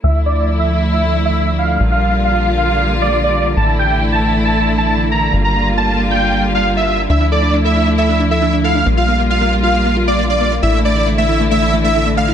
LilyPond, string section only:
\new Staff \with { instrumentName = "String section" } { \time 4/4 \key d \minor \tempo 4 = 136 << { <f a e'>1 | <g bes f'>1 | <e a e'>1 | <g bes f'>1 |
<f a e'>1 | <g bes f'>1 | <e a e'>1 | } \\ { d1~ | d1~ | d1~ | d1~ |
d1~ | d1 | d1 | } >> }